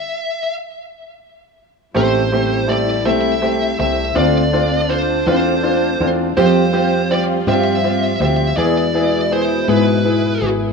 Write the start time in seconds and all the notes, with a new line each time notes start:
Already playing: E5
1.94 A1 G3 A3 C4 E4 G4 C5
2.32 A3 C4 G4
2.68 A3 C4 G4 D5
3.05 B1 A3 C4 G4 E5
3.42 A3 C4 G4
3.79 C2 A3 C4 G4 E5
4.15 D2 C4 D4 F4 D5
4.53 C4 D4 F4
4.89 C4 D4 F4 C5
5.26 E2 C4 D4 F4 C5
5.63 C4 D4 F4
6.00 E2 C4 D4 F4
6.37 F2 F3 G3 C4 F4 G4 C5
6.73 C4 F4 G4
7.11 C4 F4 G4 D5
7.47 G2 C4 F4 G4 E5
7.84 C4 F4 G4
8.20 D2 C4 F4 G4 E5
8.56 E2 B2 E3 G#3 B3 E4 G#4 D5
8.94 B3 E4 G#4
9.31 B3 E4 G#4 C5
9.68 G#2 B3 E4 G#4 B4
10.04 B3 E4 G#4
10.40 G#1 B3 E4 G#4